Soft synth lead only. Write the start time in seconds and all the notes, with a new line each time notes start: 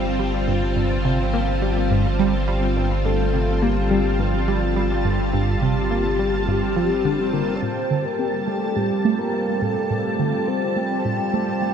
3.05 A4
3.62 G4
4.20 F4
5.33 G4
7.33 A#4
7.55 D5
7.62 C5
8.05 A#4
8.48 A4
8.76 G4
9.19 A#4
9.62 A4
9.91 A4
10.48 C5